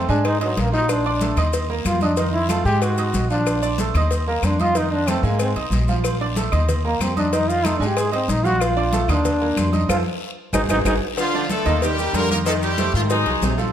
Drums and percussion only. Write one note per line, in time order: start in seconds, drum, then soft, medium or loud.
0.09 high conga soft
0.09 short guiro medium
0.25 cowbell loud
0.25 high conga soft
0.25 low agogo loud
0.25 long guiro medium
0.25 claves medium
0.41 cowbell medium
0.41 high conga soft
0.41 high timbale medium
0.41 low agogo medium
0.57 cowbell medium
0.57 high conga medium
0.57 high timbale medium
0.57 short guiro medium
0.72 low timbale medium
0.72 low agogo medium
0.72 short guiro medium
0.89 cowbell loud
0.89 high conga soft
0.89 low agogo loud
0.89 long guiro medium
0.89 claves medium
0.89 maracas medium
1.05 high conga soft
1.05 low agogo medium
1.21 cowbell medium
1.21 high conga medium
1.21 short guiro medium
1.21 maracas medium
1.37 cowbell medium
1.37 high conga soft
1.37 low conga medium
1.37 low agogo loud
1.37 short guiro medium
1.37 claves medium
1.37 maracas soft
1.53 cowbell loud
1.53 high conga soft
1.53 low agogo medium
1.53 long guiro medium
1.53 maracas medium
1.69 high conga soft
1.85 cowbell medium
1.85 high conga medium
1.85 low timbale medium
1.85 low agogo loud
1.85 short guiro medium
1.85 claves medium
1.85 maracas medium
2.01 high conga medium
2.01 short guiro medium
2.01 maracas soft
2.17 cowbell loud
2.17 low agogo medium
2.17 long guiro medium
2.17 maracas medium
2.33 high conga soft
2.33 low agogo medium
2.49 cowbell medium
2.49 high conga medium
2.49 low agogo loud
2.49 short guiro medium
2.49 claves medium
2.49 maracas medium
2.66 high conga soft
2.66 short guiro medium
2.66 maracas soft
2.81 cowbell loud
2.81 high conga soft
2.81 low agogo loud
2.81 long guiro medium
2.81 claves medium
2.81 maracas medium
2.98 cowbell medium
2.98 high conga soft
2.98 low agogo medium
2.98 maracas medium
3.14 cowbell medium
3.14 high conga medium
3.14 short guiro medium
3.14 maracas medium
3.30 low agogo medium
3.30 short guiro medium
3.30 maracas soft
3.46 cowbell loud
3.46 high conga soft
3.46 low agogo loud
3.46 long guiro medium
3.46 claves medium
3.46 maracas medium
3.63 high conga soft
3.63 low agogo medium
3.63 maracas medium
3.78 cowbell medium
3.78 high conga medium
3.78 short guiro medium
3.78 maracas medium
3.95 cowbell medium
3.95 high conga soft
3.95 low conga medium
3.95 low agogo loud
3.95 short guiro medium
3.95 claves medium
3.95 maracas soft
4.10 cowbell loud
4.10 high conga soft
4.10 low agogo medium
4.10 long guiro medium
4.10 maracas medium
4.27 high conga soft
4.43 cowbell medium
4.43 high conga medium
4.43 low agogo loud
4.43 short guiro medium
4.43 claves medium
4.43 maracas medium
4.59 high conga medium
4.59 short guiro medium
4.59 maracas soft
4.75 cowbell loud
4.75 high conga soft
4.75 low agogo medium
4.75 long guiro medium
4.75 maracas medium
4.91 high conga soft
4.91 low agogo medium
5.07 cowbell medium
5.07 high conga medium
5.07 low agogo loud
5.07 short guiro medium
5.07 claves medium
5.07 maracas medium
5.24 high conga soft
5.24 short guiro medium
5.24 maracas soft
5.39 cowbell loud
5.39 high conga soft
5.39 low agogo loud
5.39 long guiro medium
5.39 claves medium
5.39 maracas medium
5.56 cowbell medium
5.56 high conga soft
5.56 low agogo medium
5.72 cowbell medium
5.72 high conga medium
5.72 low timbale medium
5.72 short guiro medium
5.72 maracas medium
5.88 high conga medium
5.88 low agogo medium
5.88 short guiro medium
5.88 maracas soft
6.04 cowbell loud
6.04 low agogo loud
6.04 long guiro medium
6.04 claves medium
6.04 maracas medium
6.20 high conga soft
6.20 low agogo medium
6.36 cowbell medium
6.36 high conga medium
6.36 short guiro medium
6.36 maracas medium
6.52 cowbell medium
6.52 high conga soft
6.52 low conga medium
6.52 low agogo loud
6.52 short guiro medium
6.52 claves medium
6.52 maracas soft
6.69 cowbell loud
6.69 high conga soft
6.69 low conga medium
6.69 low agogo medium
6.69 long guiro medium
6.69 maracas medium
6.85 high conga soft
7.01 cowbell medium
7.01 high conga medium
7.01 low timbale medium
7.01 low agogo loud
7.01 short guiro medium
7.01 claves medium
7.01 maracas medium
7.17 high conga medium
7.17 short guiro medium
7.17 maracas soft
7.33 cowbell loud
7.33 high conga soft
7.33 low agogo medium
7.33 long guiro medium
7.33 maracas medium
7.49 high conga soft
7.49 low agogo medium
7.49 maracas medium
7.64 cowbell medium
7.64 high conga medium
7.64 low agogo loud
7.64 short guiro medium
7.64 claves medium
7.64 maracas medium
7.80 high conga soft
7.80 short guiro medium
7.80 maracas soft
7.97 cowbell loud
7.97 high conga soft
7.97 low agogo loud
7.97 long guiro medium
7.97 claves medium
7.97 maracas medium
8.13 cowbell medium
8.13 high conga soft
8.13 low agogo medium
8.29 cowbell medium
8.29 high conga medium
8.29 short guiro medium
8.29 maracas medium
8.45 high conga medium
8.45 low agogo medium
8.45 short guiro medium
8.45 maracas soft
8.61 cowbell loud
8.61 high conga soft
8.61 low agogo loud
8.61 long guiro medium
8.61 claves medium
8.61 maracas medium
8.76 high conga soft
8.76 low agogo medium
8.93 cowbell medium
8.93 high conga medium
8.93 short guiro medium
8.93 maracas medium
9.09 cowbell medium
9.09 high conga soft
9.09 low conga medium
9.09 low agogo loud
9.09 short guiro medium
9.09 claves medium
9.09 maracas soft
9.25 cowbell loud
9.25 high conga soft
9.25 low conga medium
9.25 low agogo medium
9.25 long guiro medium
9.25 maracas medium
9.41 high conga soft
9.57 cowbell medium
9.57 high conga medium
9.57 low timbale medium
9.57 low agogo loud
9.57 short guiro medium
9.57 claves medium
9.57 maracas medium
9.73 high conga medium
9.73 short guiro medium
9.73 maracas soft
9.89 cowbell loud
9.89 high conga loud
9.89 high timbale loud
9.89 long guiro loud
9.89 claves loud
9.89 maracas loud
10.53 cowbell loud
10.53 high conga loud
10.53 high timbale medium
10.53 long guiro loud
10.53 claves medium
10.53 maracas loud
10.69 cowbell loud
10.69 high conga medium
10.69 high timbale loud
10.69 long guiro medium
10.69 claves loud
10.69 maracas loud
10.85 cowbell loud
10.85 high conga loud
10.85 high timbale loud
10.85 long guiro loud
10.85 claves loud
10.85 maracas loud
11.17 cowbell loud
11.17 high conga soft
11.17 low agogo loud
11.17 long guiro medium
11.17 maracas medium
11.33 high conga soft
11.33 low agogo medium
11.50 cowbell medium
11.50 high conga loud
11.50 short guiro medium
11.50 maracas medium
11.66 cowbell medium
11.66 high conga soft
11.66 low conga medium
11.66 low agogo loud
11.66 short guiro medium
11.66 maracas soft
11.82 cowbell loud
11.82 high conga soft
11.82 low agogo medium
11.82 long guiro medium
11.82 maracas medium
11.99 high conga soft
11.99 maracas medium
12.14 cowbell medium
12.14 high conga medium
12.14 low agogo loud
12.14 short guiro medium
12.14 maracas medium
12.30 high conga medium
12.30 short guiro medium
12.30 maracas soft
12.46 cowbell loud
12.46 high conga soft
12.46 low agogo medium
12.46 long guiro medium
12.46 maracas medium
12.62 high conga soft
12.62 low agogo medium
12.62 maracas medium
12.78 cowbell medium
12.78 high conga loud
12.78 low agogo loud
12.78 short guiro medium
12.78 maracas medium
12.94 high conga soft
12.94 short guiro medium
12.94 maracas soft
13.10 cowbell loud
13.10 high conga soft
13.10 low agogo loud
13.10 long guiro medium
13.10 maracas medium
13.26 cowbell medium
13.26 high conga soft
13.26 low agogo medium
13.42 cowbell medium
13.42 high conga medium
13.42 low timbale medium
13.42 short guiro medium
13.42 maracas medium
13.58 high conga medium
13.58 low agogo medium
13.58 short guiro medium
13.58 maracas soft